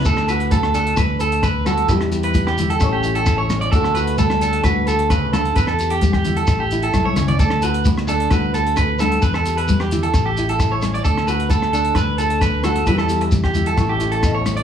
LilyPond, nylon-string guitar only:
\new Staff \with { instrumentName = "Nylon-string guitar" } { \time 4/4 \key d \major \tempo 4 = 131 << { r8 fis'4 d'4 a'4 fis'8 | <g e' g' b'>8 g'4 e'8 <a cis' cis''>8 e'4 cis'8 | <a d' fis' a'>8 fis'4 d'8 fis'8 a'4. | r8 g'4 e'8 r8 e'4 cis'8 |
r8 fis'4 d'8 fis'8 a'4. | r8 g'4 e'8 r8 e'4 cis'8 | r8 fis'4 d'4 a'4 fis'8 | <g e' g'>8 g'4 e'8 <a cis' e' cis''>8 e'4. | } \\ { d4 a4 a,4 a4 | e4 g4 r4 a4 | d4 a4 a,4 cis8 d8 | e4 g4 a,4 a4 |
d4 a4 a,4 r8 d8 | r4 g4 a,4 a4 | d4 a4 a,4 a4 | e4 g4 a,4 b,8 r8 | } >> }